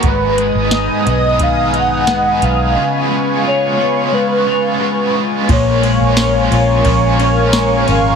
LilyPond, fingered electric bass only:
\new Staff \with { instrumentName = "Fingered electric bass" } { \clef bass \time 4/4 \key ais \phrygian \tempo 4 = 88 gis,,8. gis,,8 r16 b,,2 b,,8 | r1 | ais,,8. ais,,8. ais,,8 ais,,4. gis,,8 | }